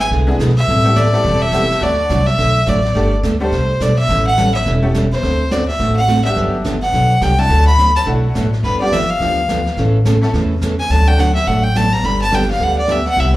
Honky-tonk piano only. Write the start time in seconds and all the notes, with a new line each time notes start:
0.27 G#3 B3 D4 E4 G#4
0.84 G3 A3 C4 E4 G4
1.13 G3 A3 C4 E4 A4
1.52 G3 A3 C4 E4 G4
1.80 F#3 A3 D4 F#4 A4
2.95 G3 A3 D4 G4 A4
3.40 G3 A3 D4 G4 A4
4.82 A3 C#4 E4 G4 A4
6.25 G3 B3 D4 F#4 G4
7.38 F#3 A3 D4 E4 F#4
8.06 F#3 A3 D4 E4 F#4
8.80 G3 B3 D4 F4 G4
10.21 E3 A3 C#4 E4 A4
11.07 F#3 A3 D4 F#4 A4
12.31 G3 B3 D4 G4 B4